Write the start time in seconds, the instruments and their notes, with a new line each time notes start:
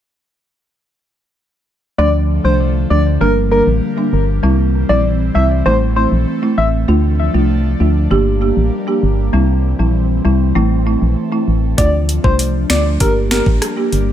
1.98 fm bass D2, analog synth pad D3 F3 A3, marimba F3 A3 D4, soft synth lead D5
2.44 fm bass C2, marimba F3 A3 D4, soft synth lead C5
2.90 fm bass D2, marimba F3 A3 D4, soft synth lead D5
3.21 fm bass G1, analog synth pad G3 A#3, marimba G3 A#3 D4, soft synth lead A#4
3.51 marimba G3 A#3 D4, soft synth lead A#4
3.67 fm bass A1
3.97 marimba G3 A#3 D4
4.13 fm bass G1
4.43 fm bass C2, analog synth pad E3 C4, marimba G3 C4 E4
4.89 fm bass A#1, marimba G3 C4 E4, soft synth lead D5
5.35 fm bass C2, marimba G3 C4 E4, soft synth lead E5
5.66 fm bass A1, marimba A3 C4 E4, analog synth pad A3, soft synth lead C5
5.96 marimba A3 C4 E4, soft synth lead C5
6.12 fm bass A#1
6.42 marimba A3 C4 E4
6.58 fm bass A1, soft synth lead E5
6.88 fm bass D2, analog synth pad F3 A3 D4, marimba A3 D4 F4
7.34 fm bass C2, marimba A3 D4 F4
7.80 fm bass D2, marimba A3 D4 F4
8.11 fm bass G1, analog synth pad G3 A#3, marimba A#3 D4 G4
8.41 marimba A#3 D4 G4
8.57 fm bass A1
8.87 marimba A#3 D4 G4
9.03 fm bass G1
9.33 fm bass C2, analog synth pad E3 C4, marimba G3 C4 E4
9.79 fm bass A#1, marimba G3 C4 E4
10.25 fm bass C2, marimba G3 C4 E4
10.55 fm bass A1, marimba A3 C4 E4, analog synth pad A3
10.86 marimba A3 C4 E4
11.02 fm bass A#1
11.32 marimba A3 C4 E4
11.48 fm bass A1
11.78 fm bass D2, analog synth pad F3 D4, marimba A3 D4 F4, soft synth lead D5, kick, closed hi-hat
12.09 closed hi-hat
12.24 fm bass C2, marimba A3 D4 F4, soft synth lead C5, kick
12.39 closed hi-hat
12.70 fm bass D2, marimba A3 D4 F4, soft synth lead D5, finger snap, snare, closed hi-hat
13.00 fm bass G1, analog synth pad G3 A#3, marimba A#3 D4 G4, soft synth lead A#4, kick, closed hi-hat
13.31 marimba A#3 D4 G4, soft synth lead A#4, finger snap, snare, closed hi-hat
13.46 fm bass A1, kick
13.62 cross-stick, closed hi-hat
13.77 marimba A#3 D4 G4
13.92 fm bass G1, closed hi-hat